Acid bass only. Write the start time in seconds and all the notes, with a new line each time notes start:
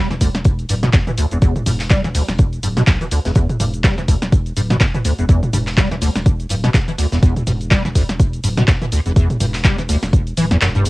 0.11 E3
0.21 D2
0.69 G2
0.83 B2
0.94 E2
1.07 E3
1.18 D2
1.32 E2
1.42 E2
1.66 G2
1.91 G3
2.04 E3
2.15 D2
2.63 G2
2.77 B2
2.87 E2
3.01 E3
3.11 D2
3.25 E2
3.36 E2
3.60 G2
3.84 G3
3.98 E3
4.08 D2
4.57 G2
4.70 B2
4.81 E2
4.95 E3
5.05 D2
5.19 E2
5.29 E2
5.53 G2
5.78 G3
5.91 E3
6.02 D2
6.50 G2
6.64 B2
6.74 E2
6.88 E3
6.98 D2
7.12 E2
7.23 E2
7.47 G2
7.71 G3
7.85 E3
7.95 D2
8.44 G2
8.57 B2
8.68 E2
8.82 E3
8.92 D2
9.06 E2
9.16 E2
9.40 G2
9.65 G3
9.79 E3
9.89 D2
10.37 E3
10.51 E2
10.61 F#2
10.75 G2
10.86 E2